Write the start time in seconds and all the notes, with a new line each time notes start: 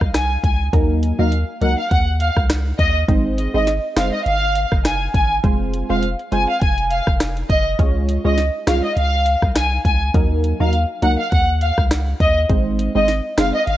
0.01 C2, kick, cross-stick
0.14 G#5, cross-stick, snare, closed hi-hat
0.44 C#2 G#5, kick, closed hi-hat
0.73 D#2 F#3 A#3 D#4 A#4, kick, closed hi-hat
1.03 closed hi-hat
1.19 D#2 F#3 A#3 D#4 A#4 F5
1.32 closed hi-hat
1.61 C#2 F#3 A#3 D#4 A#4 F#5, closed hi-hat
1.78 F5
1.91 D#2 F#5, kick, closed hi-hat
2.20 F5, closed hi-hat
2.37 C#2, kick, cross-stick
2.50 cross-stick, snare, closed hi-hat
2.79 D#2 D#5, kick, closed hi-hat
3.08 G#1 G#3 C4 D#4 C5, kick, closed hi-hat
3.38 closed hi-hat
3.54 G#1 G#3 C4 D#4 C5 D#5
3.67 snare, closed hi-hat
3.96 F#1 G#3 C4 D#4 C5 F5, cross-stick, snare, closed hi-hat
4.13 D#5
4.26 G#1 F5, closed hi-hat
4.55 closed hi-hat
4.72 F#1, kick, cross-stick
4.85 G#5, cross-stick, snare, closed hi-hat
5.14 G#1 G#5, kick, closed hi-hat
5.43 F1 G#3 C4 F4 C5, kick, closed hi-hat
5.73 closed hi-hat
5.89 F1 G#3 C4 F4 C5 F5
6.02 closed hi-hat
6.19 closed hi-hat
6.32 F#1 G#3 C4 F4 C5 G#5, closed hi-hat
6.49 F5
6.62 F1 G#5, kick, closed hi-hat
6.78 closed hi-hat
6.91 F5, closed hi-hat
7.07 F1, kick, cross-stick
7.20 cross-stick, snare, closed hi-hat
7.37 closed hi-hat
7.49 F#1 D#5, kick, closed hi-hat
7.79 C#2 G#3 C#4 F4 C#5, kick, closed hi-hat
8.09 closed hi-hat
8.24 C#2 G#3 C#4 F4 C#5 D#5
8.38 snare, closed hi-hat
8.67 C2 G#3 C#4 F4 C#5 F5, cross-stick, snare, closed hi-hat
8.84 D#5
8.97 C#2 F5, closed hi-hat
9.26 closed hi-hat
9.42 C2, kick, cross-stick
9.55 G#5, cross-stick, snare, closed hi-hat
9.85 C#2 G#5, kick, closed hi-hat
10.14 D#2 F#3 A#3 D#4 A#4, kick, closed hi-hat
10.44 closed hi-hat
10.60 D#2 F#3 A#3 D#4 A#4 F5
10.73 closed hi-hat
11.02 C#2 F#3 A#3 D#4 A#4 F#5, closed hi-hat
11.19 F5
11.32 D#2 F#5, kick, closed hi-hat
11.61 F5, closed hi-hat
11.78 C#2, kick, cross-stick
11.91 cross-stick, snare, closed hi-hat
12.20 D#2 D#5, kick, closed hi-hat
12.49 G#1 G#3 C4 D#4 C5, kick, closed hi-hat
12.79 closed hi-hat
12.95 G#1 G#3 C4 D#4 C5 D#5
13.08 snare, closed hi-hat
13.38 F#1 G#3 C4 D#4 C5 F5, cross-stick, snare, closed hi-hat
13.54 D#5
13.67 G#1 F5, closed hi-hat